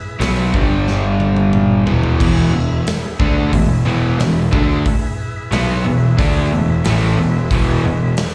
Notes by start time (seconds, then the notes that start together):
Already playing: E4 G#4 B4 E5
0.20 B1 B2 F#3 B3, snare, open hi-hat
0.53 G1 G2 D3 G3 D4 G4 D5, kick
0.88 snare
1.20 high tom
1.36 high tom
1.53 mid tom
1.87 E1 E2 B2 E3, floor tom
2.03 floor tom
2.19 E1 E2 B2 E3 B3 E4 G#4 E5, kick, crash
2.52 E1 E2 B2
2.87 snare, open hi-hat
3.20 D2 D3 A3 D4, kick
3.53 E1 E2 B2, kick, open hi-hat
3.85 E1 E2 B2 E3
4.19 E1 E2 B2, snare, open hi-hat
4.52 D2 D3 A3 D4, kick
4.85 E4 G#4 B4 E5, muted overdriven electric guitar stroke, muted picked electric bass stroke, kick, open hi-hat
5.51 B1 B2 F#3 B3, snare, open hi-hat
5.84 E1 E2 B2
6.17 D2 D3 A3 D4, kick, open hi-hat
6.52 E1 E2 B2
6.85 A1 A2 E3 A3, snare, open hi-hat
7.18 E1 E2 B2
7.50 E1 E2 B2 E3 G#4 B4 E5, kick, open hi-hat
7.84 E1 E2 B2
8.17 snare, open hi-hat